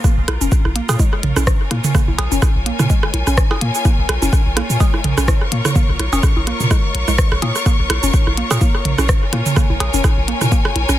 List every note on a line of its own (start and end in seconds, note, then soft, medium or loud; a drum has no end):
0.04 0.10 A#3 medium
0.04 10.99 F4 medium
0.04 kick loud
0.04 cross-stick soft
0.04 shaker soft
0.18 0.25 A#1 loud
0.18 10.99 A#4 medium
0.28 0.37 A#1 medium
0.28 cross-stick medium
0.28 closed hi-hat medium
0.28 low bongo soft
0.41 0.49 F1 loud
0.41 0.48 C#4 medium
0.41 shaker medium
0.52 kick loud
0.52 shaker soft
0.65 0.81 A#1 medium
0.65 cross-stick soft
0.65 low bongo soft
0.76 0.81 A#3 medium
0.76 closed hi-hat medium
0.89 0.96 A#2 medium
0.89 cross-stick medium
0.89 cowbell medium
0.89 shaker medium
0.95 10.99 C#5 medium
0.99 1.05 G#3 medium
0.99 kick loud
0.99 low bongo soft
0.99 shaker soft
1.13 cross-stick soft
1.23 1.33 A#1 loud
1.23 closed hi-hat medium
1.23 mid tom loud
1.36 1.53 A#1 loud
1.36 1.43 C#4 medium
1.36 cross-stick medium
1.36 low bongo soft
1.36 shaker medium
1.47 kick loud
1.47 cross-stick loud
1.47 shaker soft
1.63 5.46 G#5 loud
1.71 1.80 A#2 medium
1.71 1.76 A#3 medium
1.71 cross-stick soft
1.71 closed hi-hat medium
1.71 low bongo soft
1.84 mid tom loud
1.84 shaker medium
1.95 2.00 A#3 medium
1.95 kick loud
1.95 cross-stick medium
1.95 mid tom medium
1.95 shaker soft
2.08 2.15 A#1 loud
2.08 low bongo soft
2.18 2.28 A#1 medium
2.18 cross-stick soft
2.18 closed hi-hat medium
2.18 cowbell medium
2.32 2.39 F1 loud
2.32 2.38 C#4 medium
2.32 shaker medium
2.42 kick loud
2.42 cross-stick medium
2.42 low bongo soft
2.42 shaker soft
2.56 2.72 A#1 medium
2.66 2.72 A#3 medium
2.66 closed hi-hat loud
2.79 2.87 A#2 medium
2.79 cross-stick soft
2.79 mid tom medium
2.79 low bongo soft
2.79 shaker medium
2.90 2.96 G#3 medium
2.90 kick loud
2.90 shaker soft
3.03 cross-stick medium
3.14 3.23 A#1 loud
3.14 closed hi-hat loud
3.14 low bongo soft
3.27 3.43 A#1 loud
3.27 3.34 C#4 medium
3.27 cross-stick soft
3.27 shaker medium
3.38 kick loud
3.38 cross-stick loud
3.38 shaker soft
3.51 cross-stick medium
3.51 cowbell medium
3.51 low bongo soft
3.61 3.71 A#2 medium
3.61 3.67 A#3 medium
3.61 closed hi-hat loud
3.75 shaker medium
3.85 3.91 A#3 medium
3.85 kick loud
3.85 cross-stick soft
3.85 low bongo soft
3.85 shaker soft
3.98 4.06 A#1 loud
4.09 4.18 A#1 medium
4.09 cross-stick medium
4.09 closed hi-hat medium
4.22 4.30 F1 loud
4.22 4.29 C#4 medium
4.22 low bongo soft
4.22 shaker medium
4.33 kick loud
4.33 cross-stick soft
4.33 shaker soft
4.46 4.62 A#1 medium
4.57 4.62 A#3 medium
4.57 cross-stick medium
4.57 closed hi-hat loud
4.57 low bongo soft
4.70 4.77 A#2 medium
4.70 shaker medium
4.80 4.86 G#3 medium
4.80 kick loud
4.80 cowbell medium
4.80 shaker soft
4.94 cross-stick soft
4.94 low bongo soft
5.04 5.14 A#1 loud
5.04 closed hi-hat medium
5.04 mid tom loud
5.17 5.33 A#1 loud
5.17 5.24 C#4 medium
5.17 cross-stick medium
5.17 shaker soft
5.28 kick loud
5.28 cross-stick loud
5.28 low bongo soft
5.28 shaker soft
5.41 9.26 C#6 medium
5.41 cross-stick soft
5.52 5.61 A#2 medium
5.52 5.57 A#3 medium
5.52 closed hi-hat loud
5.65 cross-stick medium
5.65 mid tom loud
5.65 low bongo soft
5.65 shaker medium
5.76 5.81 A#3 medium
5.76 kick loud
5.76 mid tom medium
5.76 shaker soft
5.89 5.96 A#1 loud
5.99 6.09 A#1 medium
5.99 cross-stick soft
5.99 closed hi-hat medium
5.99 low bongo soft
6.13 6.20 F1 loud
6.13 6.19 C#4 medium
6.13 cowbell medium
6.13 shaker medium
6.23 kick loud
6.23 cross-stick medium
6.23 shaker soft
6.36 6.52 A#1 medium
6.36 low bongo soft
6.47 6.53 A#3 medium
6.47 cross-stick soft
6.47 closed hi-hat loud
6.60 6.68 A#2 medium
6.60 mid tom medium
6.60 shaker soft
6.71 6.77 G#3 medium
6.71 kick loud
6.71 cross-stick medium
6.71 low bongo soft
6.71 shaker soft
6.95 7.04 A#1 medium
6.95 closed hi-hat loud
7.08 7.24 A#1 loud
7.08 7.12 G#3 loud
7.08 cross-stick soft
7.08 low bongo soft
7.08 shaker soft
7.18 kick loud
7.18 cross-stick loud
7.18 shaker soft
7.32 7.39 A#1 medium
7.32 cross-stick medium
7.42 7.52 A#2 medium
7.42 7.46 A#3 medium
7.42 closed hi-hat loud
7.42 cowbell medium
7.42 low bongo soft
7.56 cross-stick soft
7.56 shaker medium
7.66 7.72 A#3 medium
7.66 kick loud
7.66 cross-stick soft
7.66 shaker soft
7.79 7.87 A#1 loud
7.90 7.99 A#1 medium
7.90 cross-stick medium
7.90 closed hi-hat medium
7.90 low bongo soft
8.03 8.11 F1 loud
8.03 8.10 C#4 medium
8.03 shaker medium
8.14 kick loud
8.14 shaker soft
8.27 8.43 A#1 medium
8.27 cross-stick soft
8.27 low bongo soft
8.37 8.43 A#3 medium
8.37 closed hi-hat medium
8.51 8.58 A#2 medium
8.51 cross-stick medium
8.51 cowbell medium
8.51 shaker medium
8.61 8.70 A#3 loud
8.61 kick loud
8.61 low bongo soft
8.61 shaker soft
8.75 cross-stick soft
8.85 8.94 A#1 loud
8.85 closed hi-hat medium
8.85 mid tom medium
8.98 9.14 A#1 loud
8.98 9.05 C#4 medium
8.98 cross-stick medium
8.98 low bongo soft
8.98 shaker soft
9.09 kick loud
9.09 cross-stick loud
9.09 shaker soft
9.24 10.99 G#5 loud
9.33 9.42 A#2 medium
9.33 9.38 A#3 medium
9.33 cross-stick soft
9.33 closed hi-hat medium
9.33 low bongo soft
9.46 mid tom medium
9.46 shaker soft
9.56 9.62 A#3 medium
9.56 kick loud
9.56 cross-stick medium
9.56 mid tom medium
9.56 shaker soft
9.70 9.77 A#1 loud
9.70 low bongo soft
9.80 9.90 A#1 medium
9.80 cross-stick soft
9.80 closed hi-hat medium
9.80 cowbell medium
9.94 10.01 F1 loud
9.94 10.00 C#4 medium
9.94 shaker medium
10.04 kick loud
10.04 cross-stick medium
10.04 low bongo soft
10.04 shaker soft
10.17 10.33 A#1 medium
10.28 10.34 A#3 medium
10.28 closed hi-hat medium
10.41 10.49 A#2 medium
10.41 cross-stick soft
10.41 mid tom medium
10.41 low bongo soft
10.41 shaker medium
10.52 10.60 A#3 loud
10.52 kick loud
10.52 shaker soft
10.65 cross-stick medium
10.76 10.85 A#1 loud
10.76 closed hi-hat medium
10.76 low bongo soft
10.89 10.99 A#1 loud
10.89 10.96 C#4 medium
10.89 cross-stick soft
10.89 shaker medium